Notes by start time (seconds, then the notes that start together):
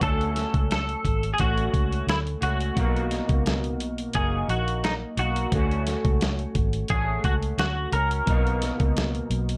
0.01 D2 A3 C#4 F#4 A4, kick, closed hi-hat
0.21 closed hi-hat
0.36 snare, closed hi-hat
0.54 C#2, kick, closed hi-hat
0.71 A4, snare, closed hi-hat
0.89 closed hi-hat
1.05 G#1, kick, closed hi-hat
1.23 closed hi-hat
1.34 G#4
1.38 A1 A3 C#4 F#4, kick, closed hi-hat
1.58 closed hi-hat
1.74 C#2, kick, closed hi-hat
1.93 closed hi-hat
2.07 D2 E4, snare, closed hi-hat
2.27 closed hi-hat
2.41 C#2 A3 C#4 F#4, closed hi-hat
2.60 closed hi-hat
2.75 B1 B2 A#3 D#4, kick, closed hi-hat
2.80 F#4
2.96 closed hi-hat
3.11 snare, closed hi-hat
3.29 C#2, kick, closed hi-hat
3.46 snare, closed hi-hat
3.64 closed hi-hat
3.79 B1, closed hi-hat
3.98 closed hi-hat
4.13 F#1 A#3 D#4 F#4 G#4, kick, closed hi-hat
4.48 A#1 F#4, closed hi-hat
4.68 closed hi-hat
4.84 D#4, snare, closed hi-hat
5.17 B1 A#3 D#4 F#4, closed hi-hat
5.36 closed hi-hat
5.52 D2 A3 C#4 F#4, kick, closed hi-hat
5.71 closed hi-hat
5.87 snare, closed hi-hat
6.05 C#2, kick, closed hi-hat
6.21 snare, closed hi-hat
6.39 closed hi-hat
6.55 G#1, kick, closed hi-hat
6.73 closed hi-hat
6.88 A1 A3 C#4 F#4 G#4, kick, closed hi-hat
7.24 C#2 F#4, kick, closed hi-hat
7.43 closed hi-hat
7.58 D2 F#4, snare, closed hi-hat
7.92 C#2 C#4 F#4 A#4, closed hi-hat
8.11 closed hi-hat
8.26 B1 B2 A#3 D#4, kick, closed hi-hat
8.31 F#4
8.47 closed hi-hat
8.62 snare, closed hi-hat
8.80 C#2, kick, closed hi-hat
8.97 snare, closed hi-hat
9.15 closed hi-hat
9.30 B1, closed hi-hat
9.49 closed hi-hat